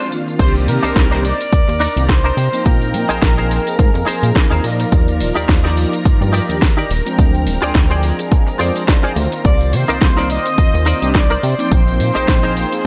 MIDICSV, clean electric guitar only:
0, 0, Header, 1, 3, 480
1, 0, Start_track
1, 0, Key_signature, -3, "minor"
1, 0, Tempo, 566038
1, 333, Time_signature, 4, 2, 24, 8
1, 10910, End_track
2, 0, Start_track
2, 0, Title_t, "Clean electric guitar"
2, 0, Program_c, 0, 27
2, 0, Note_on_c, 0, 62, 81
2, 0, Note_on_c, 0, 65, 77
2, 0, Note_on_c, 0, 72, 91
2, 91, Note_off_c, 0, 62, 0
2, 94, Note_off_c, 0, 65, 0
2, 98, Note_off_c, 0, 72, 0
2, 701, Note_on_c, 0, 62, 112
2, 706, Note_on_c, 0, 63, 108
2, 711, Note_on_c, 0, 70, 106
2, 715, Note_on_c, 0, 72, 125
2, 810, Note_off_c, 0, 62, 0
2, 813, Note_off_c, 0, 63, 0
2, 815, Note_off_c, 0, 70, 0
2, 817, Note_off_c, 0, 72, 0
2, 941, Note_on_c, 0, 62, 85
2, 945, Note_on_c, 0, 63, 78
2, 950, Note_on_c, 0, 70, 78
2, 954, Note_on_c, 0, 72, 94
2, 1184, Note_off_c, 0, 62, 0
2, 1186, Note_off_c, 0, 63, 0
2, 1189, Note_off_c, 0, 70, 0
2, 1191, Note_off_c, 0, 72, 0
2, 1527, Note_on_c, 0, 62, 108
2, 1530, Note_on_c, 0, 63, 100
2, 1537, Note_on_c, 0, 70, 90
2, 1541, Note_on_c, 0, 74, 122
2, 1717, Note_off_c, 0, 62, 0
2, 1720, Note_off_c, 0, 63, 0
2, 1721, Note_off_c, 0, 70, 0
2, 1724, Note_off_c, 0, 74, 0
2, 1900, Note_on_c, 0, 62, 90
2, 1905, Note_on_c, 0, 63, 85
2, 1910, Note_on_c, 0, 70, 81
2, 1915, Note_on_c, 0, 72, 99
2, 2010, Note_off_c, 0, 62, 0
2, 2012, Note_off_c, 0, 63, 0
2, 2015, Note_off_c, 0, 70, 0
2, 2017, Note_off_c, 0, 72, 0
2, 2619, Note_on_c, 0, 63, 115
2, 2624, Note_on_c, 0, 68, 108
2, 2629, Note_on_c, 0, 70, 110
2, 2634, Note_on_c, 0, 72, 127
2, 2729, Note_off_c, 0, 63, 0
2, 2731, Note_off_c, 0, 68, 0
2, 2734, Note_off_c, 0, 70, 0
2, 2737, Note_off_c, 0, 72, 0
2, 2863, Note_on_c, 0, 63, 87
2, 2867, Note_on_c, 0, 68, 81
2, 2872, Note_on_c, 0, 70, 79
2, 2876, Note_on_c, 0, 72, 95
2, 3105, Note_off_c, 0, 63, 0
2, 3107, Note_off_c, 0, 68, 0
2, 3110, Note_off_c, 0, 70, 0
2, 3112, Note_off_c, 0, 72, 0
2, 3445, Note_on_c, 0, 63, 113
2, 3449, Note_on_c, 0, 68, 105
2, 3455, Note_on_c, 0, 70, 99
2, 3458, Note_on_c, 0, 72, 123
2, 3636, Note_off_c, 0, 63, 0
2, 3638, Note_off_c, 0, 68, 0
2, 3641, Note_off_c, 0, 70, 0
2, 3643, Note_off_c, 0, 72, 0
2, 3820, Note_on_c, 0, 63, 94
2, 3826, Note_on_c, 0, 68, 71
2, 3828, Note_on_c, 0, 70, 87
2, 3836, Note_on_c, 0, 72, 88
2, 3930, Note_off_c, 0, 63, 0
2, 3931, Note_off_c, 0, 68, 0
2, 3934, Note_off_c, 0, 70, 0
2, 3936, Note_off_c, 0, 72, 0
2, 4540, Note_on_c, 0, 63, 119
2, 4545, Note_on_c, 0, 67, 106
2, 4549, Note_on_c, 0, 70, 107
2, 4554, Note_on_c, 0, 74, 127
2, 4650, Note_off_c, 0, 63, 0
2, 4652, Note_off_c, 0, 67, 0
2, 4654, Note_off_c, 0, 70, 0
2, 4657, Note_off_c, 0, 74, 0
2, 4780, Note_on_c, 0, 63, 87
2, 4785, Note_on_c, 0, 67, 82
2, 4789, Note_on_c, 0, 70, 77
2, 4793, Note_on_c, 0, 74, 98
2, 5024, Note_off_c, 0, 63, 0
2, 5026, Note_off_c, 0, 67, 0
2, 5028, Note_off_c, 0, 70, 0
2, 5030, Note_off_c, 0, 74, 0
2, 5366, Note_on_c, 0, 63, 108
2, 5371, Note_on_c, 0, 67, 101
2, 5375, Note_on_c, 0, 70, 99
2, 5380, Note_on_c, 0, 74, 123
2, 5557, Note_off_c, 0, 63, 0
2, 5559, Note_off_c, 0, 67, 0
2, 5561, Note_off_c, 0, 70, 0
2, 5564, Note_off_c, 0, 74, 0
2, 5741, Note_on_c, 0, 63, 93
2, 5746, Note_on_c, 0, 67, 84
2, 5751, Note_on_c, 0, 70, 86
2, 5755, Note_on_c, 0, 74, 99
2, 5850, Note_off_c, 0, 63, 0
2, 5853, Note_off_c, 0, 67, 0
2, 5855, Note_off_c, 0, 70, 0
2, 5857, Note_off_c, 0, 74, 0
2, 6460, Note_on_c, 0, 65, 119
2, 6465, Note_on_c, 0, 68, 106
2, 6470, Note_on_c, 0, 72, 106
2, 6474, Note_on_c, 0, 74, 127
2, 6569, Note_off_c, 0, 65, 0
2, 6572, Note_off_c, 0, 68, 0
2, 6574, Note_off_c, 0, 72, 0
2, 6576, Note_off_c, 0, 74, 0
2, 6699, Note_on_c, 0, 65, 83
2, 6705, Note_on_c, 0, 68, 79
2, 6709, Note_on_c, 0, 72, 78
2, 6713, Note_on_c, 0, 74, 95
2, 6943, Note_off_c, 0, 65, 0
2, 6946, Note_off_c, 0, 68, 0
2, 6948, Note_off_c, 0, 72, 0
2, 6950, Note_off_c, 0, 74, 0
2, 7286, Note_on_c, 0, 65, 111
2, 7292, Note_on_c, 0, 68, 91
2, 7296, Note_on_c, 0, 72, 103
2, 7299, Note_on_c, 0, 74, 124
2, 7477, Note_off_c, 0, 65, 0
2, 7479, Note_off_c, 0, 68, 0
2, 7482, Note_off_c, 0, 72, 0
2, 7483, Note_off_c, 0, 74, 0
2, 7659, Note_on_c, 0, 65, 90
2, 7664, Note_on_c, 0, 68, 85
2, 7668, Note_on_c, 0, 72, 82
2, 7673, Note_on_c, 0, 74, 100
2, 7769, Note_off_c, 0, 65, 0
2, 7771, Note_off_c, 0, 68, 0
2, 7774, Note_off_c, 0, 72, 0
2, 7776, Note_off_c, 0, 74, 0
2, 8380, Note_on_c, 0, 63, 115
2, 8385, Note_on_c, 0, 70, 105
2, 8389, Note_on_c, 0, 72, 103
2, 8393, Note_on_c, 0, 74, 127
2, 8490, Note_off_c, 0, 63, 0
2, 8492, Note_off_c, 0, 70, 0
2, 8494, Note_off_c, 0, 72, 0
2, 8496, Note_off_c, 0, 74, 0
2, 8622, Note_on_c, 0, 63, 84
2, 8628, Note_on_c, 0, 70, 77
2, 8632, Note_on_c, 0, 72, 76
2, 8636, Note_on_c, 0, 74, 92
2, 8865, Note_off_c, 0, 63, 0
2, 8868, Note_off_c, 0, 70, 0
2, 8870, Note_off_c, 0, 72, 0
2, 8872, Note_off_c, 0, 74, 0
2, 9209, Note_on_c, 0, 63, 108
2, 9214, Note_on_c, 0, 70, 98
2, 9218, Note_on_c, 0, 72, 104
2, 9222, Note_on_c, 0, 74, 123
2, 9398, Note_off_c, 0, 63, 0
2, 9401, Note_off_c, 0, 70, 0
2, 9403, Note_off_c, 0, 72, 0
2, 9405, Note_off_c, 0, 74, 0
2, 9584, Note_on_c, 0, 63, 90
2, 9588, Note_on_c, 0, 70, 84
2, 9594, Note_on_c, 0, 72, 84
2, 9598, Note_on_c, 0, 74, 103
2, 9691, Note_off_c, 0, 63, 0
2, 9694, Note_off_c, 0, 70, 0
2, 9696, Note_off_c, 0, 72, 0
2, 9699, Note_off_c, 0, 74, 0
2, 10303, Note_on_c, 0, 63, 113
2, 10308, Note_on_c, 0, 68, 106
2, 10312, Note_on_c, 0, 70, 104
2, 10316, Note_on_c, 0, 72, 127
2, 10411, Note_off_c, 0, 63, 0
2, 10413, Note_off_c, 0, 68, 0
2, 10415, Note_off_c, 0, 70, 0
2, 10418, Note_off_c, 0, 72, 0
2, 10542, Note_on_c, 0, 63, 90
2, 10546, Note_on_c, 0, 68, 79
2, 10552, Note_on_c, 0, 70, 82
2, 10556, Note_on_c, 0, 72, 97
2, 10785, Note_off_c, 0, 63, 0
2, 10787, Note_off_c, 0, 68, 0
2, 10790, Note_off_c, 0, 70, 0
2, 10792, Note_off_c, 0, 72, 0
2, 10910, End_track
3, 0, Start_track
3, 0, Title_t, "Muted clean electric guitar strokes"
3, 225, Note_on_c, 9, 29, 30
3, 309, Note_off_c, 9, 29, 0
3, 1422, Note_on_c, 9, 29, 33
3, 1506, Note_off_c, 9, 29, 0
3, 2143, Note_on_c, 9, 29, 34
3, 2228, Note_off_c, 9, 29, 0
3, 3342, Note_on_c, 9, 29, 32
3, 3427, Note_off_c, 9, 29, 0
3, 4061, Note_on_c, 9, 29, 35
3, 4146, Note_off_c, 9, 29, 0
3, 5261, Note_on_c, 9, 29, 33
3, 5346, Note_off_c, 9, 29, 0
3, 5981, Note_on_c, 9, 29, 34
3, 6066, Note_off_c, 9, 29, 0
3, 7180, Note_on_c, 9, 29, 33
3, 7265, Note_off_c, 9, 29, 0
3, 7901, Note_on_c, 9, 29, 33
3, 7986, Note_off_c, 9, 29, 0
3, 9103, Note_on_c, 9, 29, 35
3, 9188, Note_off_c, 9, 29, 0
3, 9827, Note_on_c, 9, 29, 34
3, 9912, Note_off_c, 9, 29, 0
3, 10910, End_track
0, 0, End_of_file